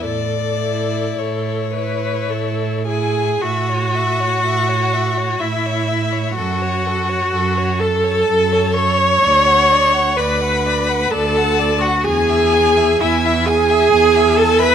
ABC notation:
X:1
M:3/4
L:1/16
Q:1/4=63
K:A
V:1 name="Violin"
d4 c6 g2 | f8 e4 | f6 a4 c'2- | c'4 b4 a3 f |
g4 e2 g4 a b |]
V:2 name="Violin"
z2 E4 E4 E2 | e c e c e c e c e c e c | A c A c A c A c A c A c | d f d f d f d f d f d f |
g e g e g e g e g e g e |]
V:3 name="Viola"
A4 A2 B2 A2 G2 | F8 E4 | F6 A4 c2- | c4 B4 A3 F |
G4 E2 G4 A B |]
V:4 name="Cello" clef=bass
A,,4 A,,4 A,,4 | A,,4 A,,4 A,,4 | F,,4 F,,4 F,,4 | D,,4 D,,4 D,,4 |
E,,4 E,,4 E,,4 |]